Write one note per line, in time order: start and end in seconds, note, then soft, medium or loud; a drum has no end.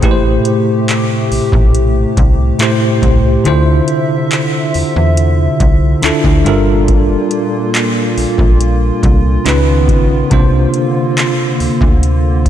0.01 0.38 A1 loud
0.01 1.63 A2 medium
0.01 6.42 C3 medium
0.01 1.63 A3 medium
0.01 3.42 A3 medium
0.01 1.64 E4 medium
0.01 3.42 G4 medium
0.01 1.64 G4 medium
0.01 0.10 B4 medium
0.01 kick loud
0.01 closed hi-hat medium
0.11 1.68 C5 loud
0.45 closed hi-hat medium
0.89 clap loud
0.89 closed hi-hat medium
1.31 1.40 A#1 soft
1.31 open hi-hat soft
1.52 2.06 A#1 medium
1.52 kick loud
1.75 closed hi-hat medium
2.17 2.52 C2 medium
2.17 kick loud
2.17 closed hi-hat medium
2.59 3.40 A2 medium
2.59 3.40 A3 medium
2.59 3.41 E4 medium
2.59 3.41 G4 medium
2.59 3.42 C5 loud
2.59 clap loud
2.59 closed hi-hat medium
3.02 3.38 C2 medium
3.02 kick medium
3.02 closed hi-hat medium
3.44 3.81 D2 loud
3.44 5.06 D3 medium
3.44 6.42 D3 medium
3.44 5.06 D4 medium
3.44 5.07 E4 medium
3.44 5.07 F4 medium
3.44 5.08 C5 medium
3.44 6.42 E5 medium
3.44 closed hi-hat medium
3.88 closed hi-hat medium
4.32 clap loud
4.32 closed hi-hat medium
4.74 4.83 E2 soft
4.74 open hi-hat medium
4.96 5.49 E2 medium
5.17 closed hi-hat medium
5.60 5.95 C2 medium
5.60 kick medium
5.60 closed hi-hat medium
6.02 6.12 D2 medium
6.02 6.45 D3 medium
6.02 6.44 D4 medium
6.02 6.46 E4 medium
6.02 6.45 F4 medium
6.02 6.46 A4 loud
6.02 clap loud
6.02 closed hi-hat medium
6.24 6.42 D2 loud
6.24 kick medium
6.45 7.16 G1 loud
6.45 9.43 A#2 medium
6.45 8.06 G3 medium
6.45 9.43 A#3 medium
6.45 8.06 D4 medium
6.45 12.49 F4 medium
6.45 8.07 F4 medium
6.45 8.07 A4 medium
6.45 8.08 A#4 loud
6.45 closed hi-hat medium
6.88 kick loud
6.88 closed hi-hat medium
7.31 closed hi-hat medium
7.75 clap loud
7.75 closed hi-hat medium
8.17 8.26 A#1 soft
8.17 open hi-hat medium
8.38 8.91 A#1 medium
8.38 kick loud
8.61 closed hi-hat medium
9.03 9.38 C2 medium
9.03 kick loud
9.03 closed hi-hat medium
9.45 9.90 C#2 loud
9.45 10.26 C#3 medium
9.45 10.30 D#3 medium
9.45 10.30 B3 medium
9.45 10.26 C#4 medium
9.45 10.26 D#4 medium
9.45 10.27 F4 medium
9.45 10.27 B4 loud
9.45 clap loud
9.45 closed hi-hat medium
9.88 10.24 A#1 medium
9.88 kick medium
9.88 closed hi-hat medium
10.30 10.67 C2 loud
10.30 11.92 C3 medium
10.30 12.49 D3 medium
10.30 11.92 A#3 medium
10.30 12.49 A#3 medium
10.30 11.93 D4 medium
10.30 11.93 F4 medium
10.30 11.93 C5 loud
10.30 kick loud
10.30 closed hi-hat medium
10.74 closed hi-hat medium
11.18 clap loud
11.18 closed hi-hat medium
11.60 11.69 D2 soft
11.60 open hi-hat medium
11.81 12.47 D2 medium
11.81 kick loud
12.03 closed hi-hat medium
12.46 12.49 C2 medium
12.46 kick loud
12.46 closed hi-hat medium